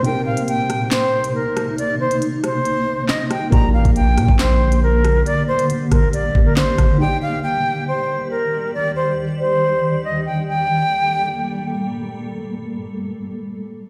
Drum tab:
HH |x--xx-x-x--x--x-|x--xx-x-x-----x-|x--xx-x-x--x--x-|x--xx-x-x-----x-|
CP |--------x-------|------------x---|--------x-------|------------x---|
SD |------r-o-----r-|------r-----o-r-|------r-o-----r-|------r-----o-r-|
BD |----------------|----------------|o--o---o--------|------o---o---o-|

HH |----------------|----------------|----------------|----------------|
CP |----------------|----------------|----------------|----------------|
SD |----------------|----------------|----------------|----------------|
BD |----------------|----------------|----------------|----------------|